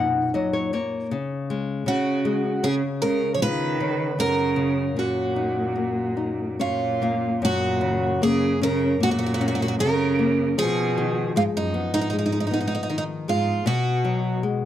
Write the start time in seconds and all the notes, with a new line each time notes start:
Already playing: F#2 A#2 B2 D#4 F#5
0.34 F#3 D#5
0.53 C#5
0.73 A#3 C#5
1.11 C#3
1.50 G#3
1.85 C#3 F#4
2.25 G#3
2.63 C#3 G#4
3.02 C#3 G#3 A#4
3.34 F3 C#5
3.42 D#3 F4 B4
3.80 C#3
4.19 F#2 C#3 A#4
4.56 C#3
4.97 A#2 C#4 F#4
5.36 D#4
5.76 A#3
6.17 D#4
6.59 A#2 C#4 F4 C#5
7.02 A#3 F5
7.42 F#2 A#2 F#4
7.81 C#3
8.22 C#3 A#3 G#4
8.61 C#3 C#4 A#4
9.00 A#2 A#3 F#4
9.11 F#4
9.19 F#4
9.26 F#4
9.34 F#4
9.40 C#4 F#4
9.48 F#4
9.55 F#4
9.62 F#4
9.68 F#4
9.79 C#3 A#4
10.19 A#3
10.58 B2 F3 G#4
10.98 D#3
11.36 G#2 G#3 F4
11.54 F#2 D#4
11.74 B3
11.93 G#2 D#4
12.01 D#4
12.10 G#3 D#4
12.19 D#4
12.26 D#4
12.32 D#4
12.40 D#4
12.47 D#4
12.51 B3 D#4
12.61 D#4
12.68 D#4
12.75 D#4
12.83 D#4
12.90 D#3 D#4
12.98 D#4
13.28 G#2 G#3 F4
13.66 B2 F#4
14.04 F#3
14.43 G#3